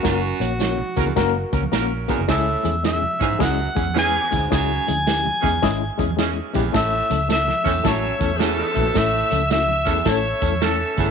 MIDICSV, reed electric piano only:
0, 0, Header, 1, 2, 480
1, 0, Start_track
1, 0, Tempo, 556586
1, 41, Time_signature, 4, 2, 24, 8
1, 9580, End_track
2, 0, Start_track
2, 0, Title_t, "Reed electric piano"
2, 0, Program_c, 0, 4
2, 25, Note_on_c, 0, 58, 88
2, 30, Note_on_c, 0, 61, 82
2, 32, Note_on_c, 0, 66, 84
2, 36, Note_on_c, 0, 70, 92
2, 200, Note_off_c, 0, 58, 0
2, 203, Note_off_c, 0, 61, 0
2, 204, Note_off_c, 0, 66, 0
2, 206, Note_off_c, 0, 70, 0
2, 345, Note_on_c, 0, 58, 74
2, 347, Note_on_c, 0, 61, 66
2, 350, Note_on_c, 0, 66, 63
2, 356, Note_on_c, 0, 73, 75
2, 440, Note_off_c, 0, 58, 0
2, 441, Note_off_c, 0, 61, 0
2, 443, Note_off_c, 0, 66, 0
2, 445, Note_off_c, 0, 73, 0
2, 507, Note_on_c, 0, 58, 67
2, 513, Note_on_c, 0, 61, 63
2, 521, Note_on_c, 0, 66, 62
2, 522, Note_on_c, 0, 73, 73
2, 682, Note_off_c, 0, 58, 0
2, 685, Note_off_c, 0, 61, 0
2, 689, Note_off_c, 0, 66, 0
2, 690, Note_off_c, 0, 73, 0
2, 831, Note_on_c, 0, 58, 81
2, 837, Note_on_c, 0, 61, 74
2, 838, Note_on_c, 0, 66, 72
2, 842, Note_on_c, 0, 70, 89
2, 924, Note_off_c, 0, 58, 0
2, 927, Note_off_c, 0, 61, 0
2, 928, Note_off_c, 0, 66, 0
2, 930, Note_off_c, 0, 70, 0
2, 1001, Note_on_c, 0, 58, 114
2, 1007, Note_on_c, 0, 61, 97
2, 1009, Note_on_c, 0, 66, 100
2, 1014, Note_on_c, 0, 70, 127
2, 1170, Note_off_c, 0, 58, 0
2, 1173, Note_off_c, 0, 61, 0
2, 1174, Note_off_c, 0, 66, 0
2, 1177, Note_off_c, 0, 70, 0
2, 1315, Note_on_c, 0, 58, 84
2, 1315, Note_on_c, 0, 61, 78
2, 1325, Note_on_c, 0, 66, 78
2, 1325, Note_on_c, 0, 70, 92
2, 1407, Note_off_c, 0, 58, 0
2, 1407, Note_off_c, 0, 61, 0
2, 1412, Note_off_c, 0, 66, 0
2, 1412, Note_off_c, 0, 70, 0
2, 1482, Note_on_c, 0, 58, 90
2, 1488, Note_on_c, 0, 61, 74
2, 1492, Note_on_c, 0, 66, 81
2, 1495, Note_on_c, 0, 70, 91
2, 1652, Note_off_c, 0, 58, 0
2, 1655, Note_off_c, 0, 61, 0
2, 1657, Note_off_c, 0, 66, 0
2, 1658, Note_off_c, 0, 70, 0
2, 1797, Note_on_c, 0, 58, 78
2, 1799, Note_on_c, 0, 61, 70
2, 1804, Note_on_c, 0, 66, 72
2, 1811, Note_on_c, 0, 70, 90
2, 1889, Note_off_c, 0, 58, 0
2, 1890, Note_off_c, 0, 61, 0
2, 1893, Note_off_c, 0, 66, 0
2, 1896, Note_off_c, 0, 70, 0
2, 1966, Note_on_c, 0, 56, 91
2, 1970, Note_on_c, 0, 61, 80
2, 1972, Note_on_c, 0, 64, 85
2, 1982, Note_on_c, 0, 68, 101
2, 2134, Note_off_c, 0, 56, 0
2, 2137, Note_off_c, 0, 61, 0
2, 2138, Note_off_c, 0, 64, 0
2, 2142, Note_off_c, 0, 68, 0
2, 2270, Note_on_c, 0, 56, 70
2, 2279, Note_on_c, 0, 61, 64
2, 2282, Note_on_c, 0, 64, 67
2, 2286, Note_on_c, 0, 68, 81
2, 2366, Note_off_c, 0, 56, 0
2, 2371, Note_off_c, 0, 61, 0
2, 2373, Note_off_c, 0, 64, 0
2, 2374, Note_off_c, 0, 68, 0
2, 2444, Note_on_c, 0, 56, 68
2, 2448, Note_on_c, 0, 61, 66
2, 2452, Note_on_c, 0, 64, 65
2, 2458, Note_on_c, 0, 68, 75
2, 2614, Note_off_c, 0, 56, 0
2, 2616, Note_off_c, 0, 61, 0
2, 2619, Note_off_c, 0, 64, 0
2, 2621, Note_off_c, 0, 68, 0
2, 2765, Note_on_c, 0, 56, 68
2, 2769, Note_on_c, 0, 61, 62
2, 2774, Note_on_c, 0, 64, 65
2, 2781, Note_on_c, 0, 68, 74
2, 2855, Note_off_c, 0, 56, 0
2, 2857, Note_off_c, 0, 61, 0
2, 2859, Note_off_c, 0, 64, 0
2, 2863, Note_off_c, 0, 68, 0
2, 2922, Note_on_c, 0, 56, 91
2, 2928, Note_on_c, 0, 61, 84
2, 2934, Note_on_c, 0, 64, 86
2, 2934, Note_on_c, 0, 68, 108
2, 3094, Note_off_c, 0, 56, 0
2, 3097, Note_off_c, 0, 61, 0
2, 3100, Note_off_c, 0, 64, 0
2, 3100, Note_off_c, 0, 68, 0
2, 3235, Note_on_c, 0, 56, 73
2, 3242, Note_on_c, 0, 61, 65
2, 3245, Note_on_c, 0, 64, 66
2, 3246, Note_on_c, 0, 68, 79
2, 3331, Note_off_c, 0, 56, 0
2, 3334, Note_off_c, 0, 61, 0
2, 3335, Note_off_c, 0, 64, 0
2, 3336, Note_off_c, 0, 68, 0
2, 3408, Note_on_c, 0, 56, 73
2, 3411, Note_on_c, 0, 61, 66
2, 3418, Note_on_c, 0, 64, 63
2, 3424, Note_on_c, 0, 71, 78
2, 3577, Note_off_c, 0, 56, 0
2, 3579, Note_off_c, 0, 61, 0
2, 3583, Note_off_c, 0, 64, 0
2, 3586, Note_off_c, 0, 71, 0
2, 3717, Note_on_c, 0, 56, 64
2, 3723, Note_on_c, 0, 61, 61
2, 3724, Note_on_c, 0, 64, 62
2, 3728, Note_on_c, 0, 68, 69
2, 3811, Note_off_c, 0, 56, 0
2, 3815, Note_off_c, 0, 61, 0
2, 3815, Note_off_c, 0, 64, 0
2, 3817, Note_off_c, 0, 68, 0
2, 3884, Note_on_c, 0, 56, 81
2, 3889, Note_on_c, 0, 61, 81
2, 3895, Note_on_c, 0, 64, 81
2, 3896, Note_on_c, 0, 68, 94
2, 4056, Note_off_c, 0, 56, 0
2, 4058, Note_off_c, 0, 61, 0
2, 4061, Note_off_c, 0, 64, 0
2, 4062, Note_off_c, 0, 68, 0
2, 4200, Note_on_c, 0, 56, 68
2, 4206, Note_on_c, 0, 61, 64
2, 4209, Note_on_c, 0, 64, 61
2, 4212, Note_on_c, 0, 68, 79
2, 4293, Note_off_c, 0, 56, 0
2, 4296, Note_off_c, 0, 61, 0
2, 4298, Note_off_c, 0, 64, 0
2, 4300, Note_off_c, 0, 68, 0
2, 4371, Note_on_c, 0, 56, 68
2, 4372, Note_on_c, 0, 61, 61
2, 4382, Note_on_c, 0, 64, 61
2, 4386, Note_on_c, 0, 67, 72
2, 4540, Note_off_c, 0, 56, 0
2, 4540, Note_off_c, 0, 61, 0
2, 4545, Note_off_c, 0, 64, 0
2, 4547, Note_off_c, 0, 67, 0
2, 4679, Note_on_c, 0, 56, 79
2, 4680, Note_on_c, 0, 61, 75
2, 4686, Note_on_c, 0, 64, 73
2, 4691, Note_on_c, 0, 68, 90
2, 4773, Note_off_c, 0, 56, 0
2, 4773, Note_off_c, 0, 61, 0
2, 4777, Note_off_c, 0, 64, 0
2, 4779, Note_off_c, 0, 68, 0
2, 4851, Note_on_c, 0, 56, 106
2, 4851, Note_on_c, 0, 61, 96
2, 4857, Note_on_c, 0, 64, 102
2, 4858, Note_on_c, 0, 68, 118
2, 5019, Note_off_c, 0, 61, 0
2, 5020, Note_off_c, 0, 56, 0
2, 5022, Note_off_c, 0, 64, 0
2, 5023, Note_off_c, 0, 68, 0
2, 5156, Note_on_c, 0, 56, 81
2, 5162, Note_on_c, 0, 64, 73
2, 5163, Note_on_c, 0, 61, 77
2, 5173, Note_on_c, 0, 68, 95
2, 5251, Note_off_c, 0, 56, 0
2, 5255, Note_off_c, 0, 61, 0
2, 5255, Note_off_c, 0, 64, 0
2, 5260, Note_off_c, 0, 68, 0
2, 5322, Note_on_c, 0, 56, 82
2, 5328, Note_on_c, 0, 61, 72
2, 5337, Note_on_c, 0, 64, 75
2, 5339, Note_on_c, 0, 68, 91
2, 5494, Note_off_c, 0, 56, 0
2, 5498, Note_off_c, 0, 61, 0
2, 5502, Note_off_c, 0, 64, 0
2, 5503, Note_off_c, 0, 68, 0
2, 5636, Note_on_c, 0, 56, 77
2, 5638, Note_on_c, 0, 61, 71
2, 5643, Note_on_c, 0, 64, 69
2, 5652, Note_on_c, 0, 67, 90
2, 5731, Note_off_c, 0, 56, 0
2, 5732, Note_off_c, 0, 61, 0
2, 5735, Note_off_c, 0, 64, 0
2, 5739, Note_off_c, 0, 67, 0
2, 5801, Note_on_c, 0, 57, 89
2, 5808, Note_on_c, 0, 61, 79
2, 5811, Note_on_c, 0, 64, 79
2, 5814, Note_on_c, 0, 69, 89
2, 5974, Note_off_c, 0, 57, 0
2, 5977, Note_off_c, 0, 61, 0
2, 5979, Note_off_c, 0, 64, 0
2, 5980, Note_off_c, 0, 69, 0
2, 6121, Note_on_c, 0, 57, 69
2, 6122, Note_on_c, 0, 61, 65
2, 6125, Note_on_c, 0, 64, 59
2, 6136, Note_on_c, 0, 69, 75
2, 6213, Note_off_c, 0, 57, 0
2, 6214, Note_off_c, 0, 61, 0
2, 6215, Note_off_c, 0, 64, 0
2, 6220, Note_off_c, 0, 69, 0
2, 6279, Note_on_c, 0, 57, 66
2, 6283, Note_on_c, 0, 61, 63
2, 6286, Note_on_c, 0, 64, 61
2, 6291, Note_on_c, 0, 69, 78
2, 6452, Note_off_c, 0, 57, 0
2, 6454, Note_off_c, 0, 61, 0
2, 6456, Note_off_c, 0, 64, 0
2, 6458, Note_off_c, 0, 69, 0
2, 6585, Note_on_c, 0, 57, 67
2, 6587, Note_on_c, 0, 61, 61
2, 6594, Note_on_c, 0, 64, 64
2, 6595, Note_on_c, 0, 69, 73
2, 6684, Note_off_c, 0, 57, 0
2, 6685, Note_off_c, 0, 61, 0
2, 6689, Note_off_c, 0, 64, 0
2, 6690, Note_off_c, 0, 69, 0
2, 6757, Note_on_c, 0, 57, 96
2, 6764, Note_on_c, 0, 61, 86
2, 6764, Note_on_c, 0, 64, 83
2, 6773, Note_on_c, 0, 69, 103
2, 6930, Note_off_c, 0, 57, 0
2, 6934, Note_off_c, 0, 61, 0
2, 6934, Note_off_c, 0, 64, 0
2, 6938, Note_off_c, 0, 69, 0
2, 7064, Note_on_c, 0, 57, 72
2, 7068, Note_on_c, 0, 61, 67
2, 7070, Note_on_c, 0, 64, 64
2, 7075, Note_on_c, 0, 69, 78
2, 7163, Note_off_c, 0, 57, 0
2, 7165, Note_off_c, 0, 61, 0
2, 7166, Note_off_c, 0, 64, 0
2, 7169, Note_off_c, 0, 69, 0
2, 7228, Note_on_c, 0, 57, 72
2, 7234, Note_on_c, 0, 61, 65
2, 7238, Note_on_c, 0, 64, 68
2, 7243, Note_on_c, 0, 66, 80
2, 7405, Note_off_c, 0, 57, 0
2, 7408, Note_off_c, 0, 61, 0
2, 7410, Note_off_c, 0, 64, 0
2, 7412, Note_off_c, 0, 66, 0
2, 7535, Note_on_c, 0, 57, 69
2, 7539, Note_on_c, 0, 61, 59
2, 7547, Note_on_c, 0, 64, 63
2, 7549, Note_on_c, 0, 69, 71
2, 7638, Note_off_c, 0, 57, 0
2, 7640, Note_off_c, 0, 61, 0
2, 7643, Note_off_c, 0, 64, 0
2, 7645, Note_off_c, 0, 69, 0
2, 7710, Note_on_c, 0, 61, 80
2, 7712, Note_on_c, 0, 57, 93
2, 7718, Note_on_c, 0, 64, 82
2, 7721, Note_on_c, 0, 69, 96
2, 7884, Note_off_c, 0, 61, 0
2, 7886, Note_off_c, 0, 57, 0
2, 7889, Note_off_c, 0, 64, 0
2, 7890, Note_off_c, 0, 69, 0
2, 8022, Note_on_c, 0, 57, 68
2, 8027, Note_on_c, 0, 61, 67
2, 8029, Note_on_c, 0, 64, 60
2, 8035, Note_on_c, 0, 69, 78
2, 8119, Note_off_c, 0, 57, 0
2, 8122, Note_off_c, 0, 61, 0
2, 8123, Note_off_c, 0, 64, 0
2, 8126, Note_off_c, 0, 69, 0
2, 8193, Note_on_c, 0, 57, 71
2, 8197, Note_on_c, 0, 61, 67
2, 8200, Note_on_c, 0, 64, 63
2, 8203, Note_on_c, 0, 66, 74
2, 8364, Note_off_c, 0, 57, 0
2, 8367, Note_off_c, 0, 61, 0
2, 8368, Note_off_c, 0, 64, 0
2, 8370, Note_off_c, 0, 66, 0
2, 8503, Note_on_c, 0, 57, 66
2, 8504, Note_on_c, 0, 61, 62
2, 8509, Note_on_c, 0, 64, 63
2, 8512, Note_on_c, 0, 69, 73
2, 8599, Note_off_c, 0, 57, 0
2, 8599, Note_off_c, 0, 61, 0
2, 8602, Note_off_c, 0, 64, 0
2, 8603, Note_off_c, 0, 69, 0
2, 8672, Note_on_c, 0, 57, 98
2, 8675, Note_on_c, 0, 64, 90
2, 8677, Note_on_c, 0, 61, 86
2, 8681, Note_on_c, 0, 69, 107
2, 8842, Note_off_c, 0, 57, 0
2, 8844, Note_off_c, 0, 64, 0
2, 8845, Note_off_c, 0, 61, 0
2, 8847, Note_off_c, 0, 69, 0
2, 8982, Note_on_c, 0, 57, 69
2, 8988, Note_on_c, 0, 61, 62
2, 8989, Note_on_c, 0, 64, 69
2, 8991, Note_on_c, 0, 69, 81
2, 9077, Note_off_c, 0, 57, 0
2, 9080, Note_off_c, 0, 61, 0
2, 9080, Note_off_c, 0, 64, 0
2, 9081, Note_off_c, 0, 69, 0
2, 9157, Note_on_c, 0, 57, 76
2, 9161, Note_on_c, 0, 61, 67
2, 9162, Note_on_c, 0, 64, 69
2, 9169, Note_on_c, 0, 69, 85
2, 9323, Note_off_c, 0, 57, 0
2, 9326, Note_off_c, 0, 61, 0
2, 9326, Note_off_c, 0, 64, 0
2, 9329, Note_off_c, 0, 69, 0
2, 9461, Note_on_c, 0, 57, 68
2, 9470, Note_on_c, 0, 61, 63
2, 9474, Note_on_c, 0, 64, 60
2, 9479, Note_on_c, 0, 69, 78
2, 9555, Note_off_c, 0, 57, 0
2, 9559, Note_off_c, 0, 61, 0
2, 9561, Note_off_c, 0, 64, 0
2, 9563, Note_off_c, 0, 69, 0
2, 9580, End_track
0, 0, End_of_file